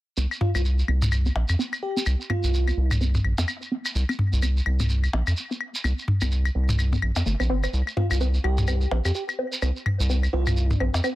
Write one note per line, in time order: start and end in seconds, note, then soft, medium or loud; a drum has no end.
0.17 0.26 C2 medium
0.17 0.22 C4 medium
0.17 shekere medium
0.31 claves soft
0.31 shekere soft
0.41 0.50 F4 medium
0.41 mid tom medium
0.55 0.83 C2 medium
0.55 0.57 C4 medium
0.55 0.61 F4 medium
0.55 claves medium
0.55 shekere medium
0.65 shekere medium
0.79 shekere soft
0.88 1.30 C2 loud
0.88 0.93 C4 medium
0.88 claves soft
1.02 mid tom medium
1.02 shekere medium
1.12 claves medium
1.12 shekere medium
1.26 1.28 C4 medium
1.26 shekere soft
1.35 1.44 A#1 medium
1.35 percussion blips medium
1.49 1.56 F2 medium
1.49 claves soft
1.49 shekere medium
1.59 1.64 C4 medium
1.59 shekere medium
1.73 claves medium
1.73 shekere soft
1.83 2.03 G4 medium
1.97 1.99 C4 medium
1.97 shekere medium
2.06 2.15 C2 loud
2.06 claves soft
2.06 shekere medium
2.21 shekere soft
2.30 2.35 C4 medium
2.30 2.97 F4 medium
2.30 mid tom medium
2.30 claves medium
2.44 2.72 C2 medium
2.44 shekere medium
2.54 shekere medium
2.67 2.70 C4 medium
2.67 claves soft
2.67 shekere soft
2.77 3.19 C2 loud
2.91 mid tom medium
2.91 claves medium
2.91 shekere medium
3.01 3.06 C4 medium
3.01 shekere medium
3.15 mid tom medium
3.15 shekere soft
3.24 3.33 A#1 medium
3.24 claves soft
3.38 3.45 F2 medium
3.38 3.40 C4 medium
3.38 percussion blips medium
3.38 shekere medium
3.48 claves medium
3.48 shekere medium
3.62 shekere soft
3.72 3.77 C4 medium
3.85 claves soft
3.85 shekere medium
3.95 4.04 C2 loud
3.95 shekere medium
4.09 4.11 C4 medium
4.09 claves medium
4.09 shekere soft
4.19 mid tom medium
4.33 4.61 C2 medium
4.33 shekere medium
4.42 4.47 C4 medium
4.42 claves soft
4.42 shekere medium
4.57 shekere soft
4.66 5.08 C2 loud
4.66 claves medium
4.80 4.82 C4 medium
4.80 mid tom medium
4.80 shekere medium
4.89 shekere medium
5.04 claves soft
5.04 shekere soft
5.13 5.22 A#1 medium
5.13 5.18 C4 medium
5.13 percussion blips medium
5.27 5.34 F2 medium
5.27 claves medium
5.27 shekere medium
5.37 shekere medium
5.51 5.53 C4 medium
5.51 shekere soft
5.61 claves soft
5.75 shekere medium
5.84 5.93 C2 loud
5.84 5.89 C4 medium
5.84 claves medium
5.84 shekere medium
5.99 shekere soft
6.08 mid tom medium
6.21 6.50 C2 medium
6.21 6.24 C4 medium
6.21 claves soft
6.21 shekere medium
6.32 shekere medium
6.45 claves medium
6.45 shekere soft
6.55 6.97 C2 medium
6.55 6.60 C4 medium
6.69 mid tom medium
6.69 shekere medium
6.79 claves soft
6.79 shekere medium
6.93 6.95 C4 medium
6.93 mid tom medium
6.93 shekere soft
7.02 7.11 A#1 medium
7.02 claves medium
7.16 7.23 F2 medium
7.16 7.22 C4 medium
7.16 percussion blips medium
7.16 shekere medium
7.26 7.35 G1 medium
7.26 7.31 A#3 medium
7.26 shekere medium
7.40 7.51 A#1 medium
7.40 7.43 C4 medium
7.40 claves soft
7.40 shekere soft
7.50 7.66 G1 medium
7.50 7.53 C4 medium
7.63 7.67 C4 medium
7.63 claves medium
7.63 shekere medium
7.73 7.82 C2 loud
7.73 shekere medium
7.87 claves soft
7.87 shekere soft
7.97 8.02 C4 medium
7.97 8.06 F4 medium
7.97 mid tom medium
8.11 8.39 C2 medium
8.11 8.17 F4 medium
8.11 claves medium
8.11 shekere medium
8.21 8.24 C4 medium
8.21 shekere medium
8.34 shekere soft
8.44 8.86 C2 loud
8.44 9.02 G4 medium
8.44 claves soft
8.58 mid tom medium
8.58 shekere medium
8.67 8.73 C4 medium
8.67 claves medium
8.67 shekere medium
8.81 shekere soft
8.91 9.00 A#1 medium
8.91 8.94 C4 medium
8.91 percussion blips medium
9.05 9.11 F2 medium
9.05 9.11 G4 medium
9.05 claves soft
9.05 shekere medium
9.15 9.24 G4 medium
9.15 shekere medium
9.29 claves medium
9.29 shekere soft
9.39 9.44 C4 medium
9.53 shekere medium
9.62 9.71 C2 loud
9.62 9.65 C4 medium
9.62 claves soft
9.62 shekere medium
9.76 shekere soft
9.86 mid tom medium
9.86 claves medium
10.00 10.28 C2 medium
10.00 shekere medium
10.10 10.15 C4 medium
10.10 shekere medium
10.23 claves soft
10.23 shekere soft
10.33 10.75 C2 loud
10.33 10.36 C4 medium
10.33 10.80 F4 medium
10.47 mid tom medium
10.47 claves medium
10.47 shekere medium
10.57 shekere medium
10.71 mid tom medium
10.71 shekere soft
10.80 10.89 A#1 medium
10.80 10.85 C4 medium
10.80 claves soft
10.94 11.01 F2 medium
10.94 percussion blips medium
10.94 shekere medium
11.04 11.07 C4 medium
11.04 claves medium
11.04 shekere medium